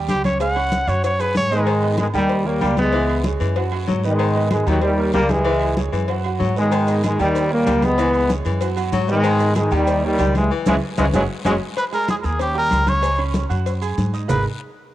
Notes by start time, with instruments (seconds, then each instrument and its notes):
Already playing: grand piano G3 G4 G5
0.08 upright bass C#2, trumpet G4, cowbell, high conga, low timbale, low agogo, short guiro, maracas
0.24 grand piano C#4 C#5 C#6, trumpet C#5, cowbell, high conga, low agogo, short guiro, maracas
0.40 grand piano G#3 G#4 G#5, trumpet F#5, cowbell, high conga, low agogo, long guiro, maracas
0.56 grand piano C#4 C#5 C#6, high conga, low agogo
0.72 cowbell, high conga, short guiro, maracas
0.87 upright bass F#2, grand piano F#4 F#5 F#6, trumpet C#5, high conga, low agogo, short guiro, maracas
1.04 trumpet C#5, cowbell, high conga, high timbale, low agogo, long guiro, maracas
1.19 grand piano G#4 G#5 G#6, trumpet B4, high conga, high timbale, low agogo, maracas
1.35 upright bass G#2, trumpet C#5, cowbell, high conga, short guiro, maracas
1.51 trombone section D#3 G#3, grand piano D#4 D#5 D#6, high conga, low timbale, short guiro, maracas
1.66 baritone saxophone D#3, cowbell, high conga, low agogo, long guiro
1.82 grand piano B3 B4 D#5, high conga, low agogo
1.98 trombone section D#3 G#3, cowbell, high conga, low agogo, short guiro
2.13 upright bass D#2, baritone saxophone D#3, trombone section D#3 G3, grand piano G3 G4 G5, high conga, short guiro
2.29 cowbell, high conga, low agogo, long guiro
2.46 trombone section G3 A#3, grand piano A#3 A#4 C#5, high conga
2.61 upright bass C#2, baritone saxophone G3, grand piano G3 G4 G5, cowbell, high conga, low timbale, low agogo, short guiro
2.77 trombone section G#3 B3, cowbell, high conga, low agogo, short guiro
2.92 baritone saxophone E3, grand piano E3 E4 E5, cowbell, low agogo, long guiro
3.09 high conga, low agogo
3.24 grand piano G#3 G#4 C#5, cowbell, high conga, short guiro
3.40 upright bass F#2, baritone saxophone E3, high conga, low agogo, short guiro
3.56 grand piano F#3 F#4 F#5, cowbell, high conga, low agogo, long guiro
3.72 grand piano F#3 F#4 F#5, high conga, low agogo
3.87 upright bass G#2, baritone saxophone F#3, cowbell, high conga, low timbale, short guiro
4.03 trombone section D#3 G#3, grand piano B3 B4 D#5, high conga, short guiro
4.19 baritone saxophone D#3, cowbell, high conga, low agogo, long guiro
4.35 grand piano B3 B4 D#5, high conga, low agogo
4.50 trombone section D#3 G#3, cowbell, high conga, low agogo, short guiro
4.66 upright bass D#2, baritone saxophone D#3, trombone section D#3 F#3, grand piano G3 G4 G5, high conga, short guiro
4.82 trombone section D#3 G3, cowbell, high conga, low agogo, long guiro
4.98 grand piano A#3 A#4 C#5, high conga
5.13 upright bass C#2, grand piano G3 G4 G5, baritone saxophone G3, trombone section G3 A#3, cowbell, high conga, low agogo, short guiro
5.29 trombone section E3 G#3, cowbell, high conga, low agogo, short guiro
5.45 baritone saxophone E3, grand piano E3 E4 E5, cowbell, low agogo, long guiro
5.61 high conga, low agogo
5.77 grand piano G#3 G#4 C#5, cowbell, high conga, short guiro
5.92 upright bass F#2, baritone saxophone E3, high conga, low agogo, short guiro
6.08 grand piano F#3 F#4 F#5, cowbell, high conga, low agogo, long guiro
6.24 grand piano F#3 F#4 F#5, high conga, low agogo
6.39 upright bass G#2, baritone saxophone F#3, cowbell, high conga, low timbale, short guiro
6.56 trombone section D#3 G#3, grand piano B3 B4 D#5, high conga, short guiro
6.71 baritone saxophone D#3, cowbell, high conga, low agogo, long guiro, maracas
6.87 grand piano B3 B4 D#5, high conga, low agogo, maracas
7.03 trombone section D#3 G#3, cowbell, high conga, low agogo, short guiro, maracas
7.19 upright bass D#2, baritone saxophone D#3, trombone section D#3 G3, grand piano G3 G4 G5, high conga, short guiro, maracas
7.35 cowbell, high conga, low agogo, long guiro, maracas
7.51 trombone section G3 A#3, grand piano A#3 A#4 C#5, high conga
7.66 upright bass C#2, grand piano G3 G4 G5, baritone saxophone G3, cowbell, high conga, low timbale, low agogo, short guiro, maracas
7.82 trombone section G#3 B3, cowbell, high conga, low agogo, short guiro, maracas
7.98 grand piano E3 E4 E5, baritone saxophone E3, cowbell, low agogo, long guiro, maracas
8.13 high conga, low agogo, maracas
8.29 grand piano G#3 G#4 C#5, cowbell, high conga, short guiro, maracas
8.45 upright bass F#2, baritone saxophone E3, high conga, low agogo, short guiro, maracas
8.61 grand piano F#3 F#4 F#5, cowbell, high conga, low agogo, long guiro, maracas
8.76 grand piano F#3 F#4 F#5, high conga, low agogo, maracas
8.92 upright bass G#2, baritone saxophone F#3, cowbell, high conga, short guiro, maracas
9.08 trombone section D#3 G#3, grand piano B3 B4 D#5, high conga, short guiro, maracas
9.23 baritone saxophone D#3, cowbell, high conga, low agogo, long guiro, maracas
9.40 grand piano B3 B4 D#5, high conga, low agogo, maracas
9.55 trombone section D#3 G#3, cowbell, high conga, low agogo, short guiro, maracas
9.71 upright bass D#2, baritone saxophone D#3, trombone section D#3 G3, grand piano G3 G4 G5, high conga, short guiro, maracas
9.87 cowbell, high conga, low agogo, long guiro, maracas
10.03 trombone section D#3 G3, grand piano A#3 A#4 C#5, high conga
10.18 upright bass C#2, baritone saxophone G3, grand piano G3 G4 G5, cowbell, high conga, low timbale, low agogo, short guiro, maracas
10.35 trombone section E3 G#3, cowbell, high conga, low agogo, short guiro, maracas
10.51 baritone saxophone E3
10.66 upright bass C#2, trombone section C#3 E3 G#3, grand piano C#4 E4 G#4, cowbell, high conga, high timbale, long guiro, maracas
10.97 upright bass C#2, trombone section C#3 E3 G#3, baritone saxophone E3, grand piano C#4 E4 G#4, cowbell, high conga, high timbale, long guiro, maracas
11.14 upright bass F#1, trombone section C#3 F#3 G#3, grand piano C#4 F#4 G#4, cowbell, high conga, high timbale, long guiro, maracas
11.45 upright bass F#1, trombone section C#3 F#3 G#3, baritone saxophone F#3, grand piano C#4 F#4 G#4, cowbell, high conga, high timbale, long guiro, maracas
11.76 muted trumpet B4, cowbell, high conga, low agogo, long guiro, maracas
11.92 grand piano G#3 G#4 G#5, muted trumpet A#4, high conga, low agogo, maracas
12.08 muted trumpet G#4, cowbell, high conga, low agogo, short guiro, maracas
12.21 upright bass D#2, grand piano A#3 A#4 A#5, muted trumpet G#4 A#4, high conga, short guiro, maracas
12.39 grand piano C#4 C#5 C#6, muted trumpet G4, cowbell, high conga, low agogo, long guiro, maracas
12.55 grand piano G3 G4 G5, muted trumpet A#4, high conga
12.71 upright bass C#2, cowbell, high conga, low timbale, low agogo, short guiro, maracas
12.87 grand piano C#4 C#5 C#6, muted trumpet C#5, cowbell, high conga, low agogo, short guiro, maracas
13.02 grand piano G#3 G#4 G#5, cowbell, high conga, low agogo, long guiro, maracas
13.19 grand piano C#4 C#5 C#6, high conga, low agogo
13.34 cowbell, high conga, short guiro, maracas
13.49 upright bass F#2, grand piano F#4 F#5 F#6, high conga, low agogo, short guiro, maracas
13.66 cowbell, high conga, low agogo, long guiro, maracas
13.82 grand piano G#4 G#5 G#6, high conga, low agogo, maracas
13.98 upright bass G#2, cowbell, high conga, short guiro, maracas
14.14 grand piano D#4 D#5 D#6, high conga, short guiro, maracas
14.28 upright bass G#1, grand piano G#3 D#4 G#4 A#4 B4 D#5, muted trumpet B4, low bongo, low conga, low timbale, long guiro, maracas